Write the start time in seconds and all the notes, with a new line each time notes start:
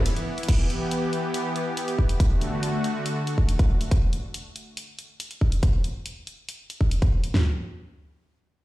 Already playing: E3 B3 E4
0.06 closed hi-hat, ride
0.16 closed hi-hat
0.38 closed hi-hat
0.43 closed hi-hat
0.48 E3 B3 G4, kick, closed hi-hat, crash
0.70 closed hi-hat
0.91 closed hi-hat
1.13 closed hi-hat
1.34 closed hi-hat
1.56 closed hi-hat
1.77 closed hi-hat
1.88 closed hi-hat
1.99 kick
2.09 closed hi-hat
2.20 D3 A3 F#4, kick, closed hi-hat
2.41 closed hi-hat
2.63 closed hi-hat
2.84 closed hi-hat
3.06 closed hi-hat
3.27 closed hi-hat
3.38 kick
3.49 closed hi-hat
3.59 kick, closed hi-hat
3.81 closed hi-hat
3.91 kick, closed hi-hat
4.13 closed hi-hat
4.34 closed hi-hat
4.56 closed hi-hat
4.77 closed hi-hat
4.99 closed hi-hat
5.20 closed hi-hat
5.31 closed hi-hat
5.41 kick
5.52 closed hi-hat
5.63 kick, closed hi-hat
5.84 closed hi-hat
6.06 closed hi-hat
6.27 closed hi-hat
6.49 closed hi-hat
6.70 closed hi-hat
6.81 kick
6.91 closed hi-hat
7.02 kick, closed hi-hat
7.24 closed hi-hat
7.34 snare, floor tom